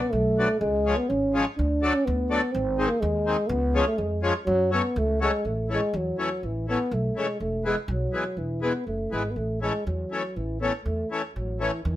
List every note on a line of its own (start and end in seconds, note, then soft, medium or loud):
0.00 0.13 B3 loud
0.12 0.44 B1 medium
0.12 0.60 A3 loud
0.39 0.48 F#3 medium
0.39 0.48 B3 medium
0.39 0.49 D4 medium
0.60 0.92 C#2 loud
0.60 0.98 G#3 loud
0.85 0.96 F3 medium
0.85 0.96 G#3 medium
0.85 0.97 C#4 medium
0.96 1.11 B3 medium
1.09 1.41 G#1 medium
1.09 1.46 C#4 loud
1.34 1.45 F3 medium
1.34 1.45 G#3 medium
1.34 1.45 C#4 medium
1.57 1.90 D2 loud
1.57 1.95 D4 medium
1.82 1.93 F#3 medium
1.82 1.93 A3 medium
1.82 1.93 D4 medium
1.94 2.07 C#4 medium
2.05 2.38 D2 loud
2.05 2.54 B3 medium
2.30 2.41 F#3 medium
2.30 2.41 A3 medium
2.30 2.41 D4 medium
2.52 2.85 G#1 loud
2.52 2.89 C4 loud
2.78 2.89 D#3 medium
2.78 2.89 G#3 medium
2.78 2.89 C4 medium
2.88 3.02 A#3 medium
3.00 3.33 D#2 loud
3.00 3.50 G#3 medium
3.26 3.37 D#3 medium
3.26 3.37 G#3 medium
3.26 3.37 C4 medium
3.48 3.81 C#2 loud
3.48 3.85 B3 loud
3.74 3.85 F3 medium
3.74 3.85 G#3 medium
3.74 3.85 C#4 medium
3.86 3.99 A3 loud
3.97 4.30 F2 loud
3.97 4.23 G#3 medium
4.22 4.33 F3 medium
4.22 4.33 G#3 medium
4.22 4.34 C#4 medium
4.46 4.79 F#2 loud
4.46 4.69 F#3 loud
4.71 4.82 F#3 medium
4.71 4.82 A3 medium
4.71 4.99 B3 medium
4.71 4.82 C#4 medium
4.96 5.28 C#2 loud
4.96 5.21 A3 medium
5.21 5.31 F#3 medium
5.21 5.47 G#3 loud
5.21 5.31 A3 medium
5.21 5.32 C#4 medium
5.45 5.77 A1 medium
5.45 5.70 A3 medium
5.69 5.80 E3 medium
5.69 5.98 G#3 loud
5.69 5.81 A3 medium
5.69 5.81 C#4 medium
5.93 6.10 E2 loud
5.93 6.47 F#3 medium
6.18 6.29 E3 medium
6.18 6.29 A3 medium
6.18 6.29 C#4 medium
6.43 6.75 A1 medium
6.43 6.69 E3 medium
6.68 6.78 E3 medium
6.68 6.79 A3 medium
6.68 6.95 B3 loud
6.68 6.79 C#4 medium
6.91 7.08 B1 loud
6.91 7.19 A3 medium
7.16 7.27 E3 medium
7.16 7.40 G#3 medium
7.16 7.27 A3 medium
7.16 7.27 C#4 medium
7.40 7.72 E1 medium
7.40 7.64 A3 medium
7.65 7.76 E3 medium
7.65 7.76 G#3 medium
7.65 7.77 G#3 medium
7.65 7.76 B3 medium
7.88 8.05 B1 loud
7.88 8.39 F#3 medium
8.13 8.24 E3 medium
8.13 8.24 G#3 medium
8.13 8.24 B3 medium
8.37 8.69 E1 medium
8.37 8.63 E3 medium
8.62 8.73 E3 medium
8.62 8.73 G#3 medium
8.62 8.73 B3 medium
8.62 8.86 B3 medium
8.87 9.10 F#1 medium
8.87 9.15 A3 medium
9.11 9.34 G#1 medium
9.11 9.23 E3 medium
9.11 9.23 G#3 soft
9.11 9.32 G#3 medium
9.11 9.23 B3 medium
9.31 9.38 B3 medium
9.36 9.69 A1 medium
9.36 9.61 A3 medium
9.61 9.73 E3 medium
9.61 9.84 G#3 medium
9.61 9.73 A3 medium
9.61 9.73 C#4 medium
9.87 10.03 E2 loud
9.87 10.38 F#3 medium
10.11 10.23 E3 medium
10.11 10.23 A3 medium
10.11 10.23 C#4 medium
10.36 10.69 A1 medium
10.36 10.60 E3 medium
10.61 10.72 E3 medium
10.61 10.73 A3 medium
10.61 10.72 B3 medium
10.61 10.73 C#4 medium
10.84 11.02 E2 medium
10.84 11.09 A3 medium
11.11 11.22 E3 medium
11.11 11.22 A3 medium
11.11 11.22 C#4 medium
11.35 11.68 A1 medium
11.35 11.63 F#3 medium
11.60 11.71 E3 medium
11.60 11.84 E3 medium
11.60 11.71 A3 medium
11.60 11.71 C#4 medium
11.84 11.96 E2 loud
11.84 11.96 E3 medium